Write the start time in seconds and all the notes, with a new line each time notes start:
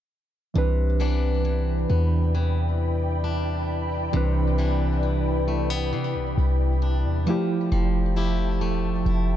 0.54 C2 C3 E3 C4 D4 E4 D5 G5 B5
0.58 B4
1.00 E3 B3 D4
1.45 E3
1.90 E2 B3
2.35 E3
3.24 D4
4.13 C2 C3 E3 C4 D4 B4
4.58 E3 B3 D4
5.03 E3
5.48 A3
5.70 B3
5.93 C3 E3
6.15 C2
6.38 C2
6.82 D4
7.05 E2
7.26 F3 A3 E4 E5 G5 A5
7.30 G4
7.72 F1 F3
8.16 A3 E4 G4
8.61 E1 A3
8.84 F1
9.06 F1 E4